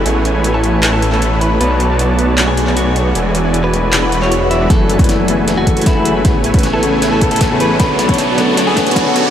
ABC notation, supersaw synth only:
X:1
M:4/4
L:1/16
Q:1/4=155
K:F#m
V:1 name="Supersaw synth"
[A,EBcg]3 [A,EBcg]6 [A,EBcg] z [A,EBcg] [A,EBcb]4 | [B,Fcda]3 [B,Fcda]6 [B,Fcda] z [B,Fcda] [B,Fcdc']4 | [E,EFdg]3 [E,EFdg]6 [E,EFdg] [E,EFdb] [E,EFdc'] z2 [E,EFdb]2 | [F,B]3 [F,EABg]6 [F,EABg] z [F,EABg] [F,EABb]4 |
[A,EBc]3 [Bc]6 [A,EBcg] z [A,EBcg] [A,EBcb]4 | [B,Fcda]3 [B,a]6 [B,Fcda] z [B,Fcda] [B,Fcdc']4 |]